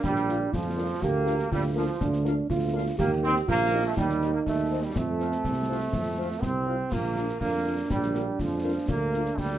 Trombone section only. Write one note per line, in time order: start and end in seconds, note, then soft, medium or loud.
0.04 0.49 G3 medium
0.53 1.02 F3 medium
1.02 1.51 A#3 loud
1.51 1.62 G3 loud
1.76 2.21 F3 medium
2.99 3.10 A#3 medium
3.24 3.35 C4 loud
3.49 3.83 A#3 loud
3.86 3.92 A3 medium
3.97 4.31 G3 medium
4.34 4.39 A#3 medium
4.46 4.80 A3 medium
4.83 4.95 G3 medium
4.96 6.43 A3 medium
6.42 6.92 C4 medium
6.92 7.39 A#3 medium
7.41 7.87 A#3 medium
7.91 8.36 G3 medium
8.40 8.89 F3 medium
8.89 9.35 A#3 medium
9.37 9.58 G3 medium